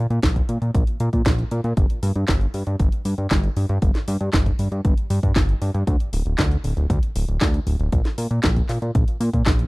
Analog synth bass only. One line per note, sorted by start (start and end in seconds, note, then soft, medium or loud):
0.10 0.20 A#2 medium
0.23 0.42 A#1 loud
0.49 0.58 A#2 medium
0.62 0.71 A#2 medium
0.75 0.84 A#1 medium
1.00 1.09 A#2 loud
1.13 1.22 A#2 medium
1.26 1.44 A#1 medium
1.51 1.61 A#2 medium
1.64 1.73 A#2 medium
1.77 1.86 G1 loud
2.03 2.12 G2 medium
2.16 2.25 G2 medium
2.28 2.47 G1 loud
2.54 2.63 G2 medium
2.67 2.76 G2 medium
2.80 2.89 G1 loud
3.05 3.14 G2 medium
3.18 3.27 G2 medium
3.31 3.49 G1 loud
3.57 3.66 G2 medium
3.69 3.79 G2 loud
3.82 3.91 G1 medium
4.08 4.17 G2 medium
4.21 4.30 G2 medium
4.33 4.52 G1 loud
4.59 4.68 G2 medium
4.72 4.81 G2 medium
4.85 4.94 G1 loud
5.10 5.19 G2 loud
5.23 5.32 G2 medium
5.36 5.54 G1 medium
5.62 5.71 G2 loud
5.74 5.84 G2 loud
5.87 5.96 D2 loud
6.13 6.22 D1 medium
6.26 6.35 D1 medium
6.39 6.57 D2 loud
6.64 6.73 D1 medium
6.77 6.86 D1 medium
6.90 6.99 D2 loud
7.15 7.25 D1 medium
7.28 7.37 D1 medium
7.41 7.60 D2 loud
7.67 7.76 D1 medium
7.79 7.89 D1 loud
7.92 8.02 A#1 medium
8.18 8.27 A#2 medium
8.31 8.40 A#2 medium
8.44 8.62 A#1 loud
8.69 8.78 A#2 medium
8.82 8.91 A#2 medium
8.95 9.04 A#1 medium
9.20 9.30 A#2 loud
9.33 9.43 A#2 medium
9.46 9.65 A#1 medium